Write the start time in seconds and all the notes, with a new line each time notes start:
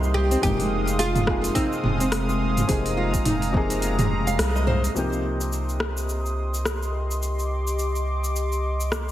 Already playing: C2 C3 F3 A#3 D#4 G4 D#5 C6
0.03 shaker
0.14 G4
0.31 C4, open hi-hat, shaker
0.41 F1 C3 F3 G#3 A#3 D#4 G4 F5 D#6, kick, mid tom, open hi-hat, shaker
0.59 G#3, open hi-hat, shaker
0.87 open hi-hat, shaker
0.99 F4 G#4, open hi-hat, shaker
1.16 mid tom, open hi-hat, shaker
1.26 C3 F3 A#3 D#4 F4 G#4, kick, cross-stick
1.44 open hi-hat, shaker
1.55 C4 D#4, kick, open hi-hat, shaker
1.73 shaker
1.84 F1, mid tom
2.00 C4, open hi-hat, shaker
2.12 cross-stick, open hi-hat, shaker
2.29 G#4, shaker
2.57 mid tom, open hi-hat, shaker
2.67 F1 C3 F3 A#3 D#4 G#4 A#5, kick, open hi-hat, shaker
2.71 G#4
2.86 open hi-hat, shaker
2.97 F4
3.14 kick, open hi-hat, shaker
3.25 F1 D#4, mid tom, open hi-hat, shaker
3.42 open hi-hat, shaker
3.52 C3 F3 A#3 D#4, kick
3.57 G#4
3.70 C4, open hi-hat, shaker
3.82 open hi-hat, shaker
3.99 G#4, mid tom, open hi-hat, shaker
4.27 F5, open hi-hat, shaker
4.39 C2, cross-stick, open hi-hat, shaker
4.55 D#5, shaker
4.67 C5, mid tom
4.84 open hi-hat, shaker
4.94 C2 C3 F3 A#3 D#4 G4 D#5 C6 D#6, shaker
5.13 shaker
5.41 shaker
5.53 shaker
5.69 shaker
5.80 cross-stick
5.97 shaker
6.09 shaker
6.26 shaker
6.54 shaker
6.65 cross-stick, shaker
6.83 shaker
7.11 shaker
7.22 D6, shaker
7.39 shaker
7.67 shaker
7.79 shaker
7.96 shaker
8.24 shaker
8.36 shaker
8.52 shaker
8.80 shaker
8.92 cross-stick, shaker